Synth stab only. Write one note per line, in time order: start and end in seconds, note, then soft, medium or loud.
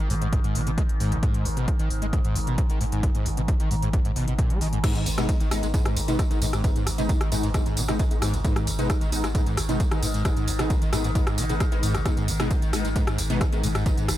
4.84 5.00 G#3 medium
4.84 5.00 B3 medium
4.84 5.00 D#4 medium
5.18 5.34 G#3 medium
5.18 5.34 B3 medium
5.18 5.34 D#4 loud
5.51 5.62 G#3 loud
5.51 5.62 B3 medium
5.51 5.62 D#4 loud
5.74 5.84 G#3 medium
5.74 5.84 B3 medium
5.74 5.84 D#4 medium
6.08 6.18 G#3 medium
6.08 6.18 B3 medium
6.08 6.18 D#4 loud
6.31 6.46 G#3 medium
6.31 6.46 B3 medium
6.31 6.46 D#4 medium
6.64 6.80 G#3 medium
6.64 6.80 B3 medium
6.64 6.80 D#4 medium
6.98 7.14 G#3 loud
6.98 7.14 B3 medium
6.98 7.14 D#4 loud
7.32 7.42 G#3 medium
7.32 7.42 B3 medium
7.32 7.42 D#4 loud
7.54 7.65 G#3 medium
7.54 7.65 B3 medium
7.54 7.65 D#4 medium
7.88 7.98 G#3 loud
7.88 7.98 B3 medium
7.88 7.98 D#4 loud
8.11 8.27 G#3 medium
8.11 8.27 B3 medium
8.11 8.27 D#4 medium
8.45 8.61 G#3 medium
8.45 8.61 B3 medium
8.45 8.61 D#4 medium
8.79 8.94 G#3 loud
8.79 8.94 B3 medium
8.79 8.94 D#4 loud
9.12 9.22 G#3 loud
9.12 9.22 B3 medium
9.12 9.22 D#4 loud
9.35 9.45 G#3 medium
9.35 9.45 B3 medium
9.35 9.45 D#4 medium
9.69 9.79 G#3 loud
9.69 9.79 B3 medium
9.69 9.79 D#4 loud
9.92 10.07 G#3 medium
9.92 10.07 B3 medium
9.92 10.07 D#4 medium
10.25 10.41 G#3 medium
10.25 10.41 B3 medium
10.25 10.41 D#4 medium
10.59 10.75 G#3 loud
10.59 10.75 B3 medium
10.59 10.75 D#4 loud
10.93 11.03 G#3 medium
10.93 11.03 B3 medium
10.93 11.03 D#4 loud
11.15 11.26 G#3 medium
11.15 11.25 B3 medium
11.15 11.25 D#4 medium
11.49 11.59 G#3 medium
11.49 11.59 B3 medium
11.49 11.59 D#4 medium
11.72 11.82 G#3 loud
11.72 11.82 B3 medium
11.72 11.82 D#4 loud
12.06 12.22 G#3 medium
12.06 12.22 B3 medium
12.06 12.22 D#4 medium
12.40 12.55 G#3 loud
12.40 12.55 B3 medium
12.40 12.55 D#4 loud
12.73 12.83 G#3 medium
12.73 12.83 B3 medium
12.73 12.83 D#4 loud
12.96 13.06 G#3 medium
12.96 13.06 B3 medium
12.96 13.06 D#4 medium
13.30 13.40 G#3 loud
13.30 13.40 B3 medium
13.30 13.40 D#4 loud
13.52 13.68 G#3 medium
13.52 13.68 B3 medium
13.52 13.68 D#4 medium
13.86 14.02 G#3 medium
13.86 14.02 B3 medium
13.86 14.02 D#4 medium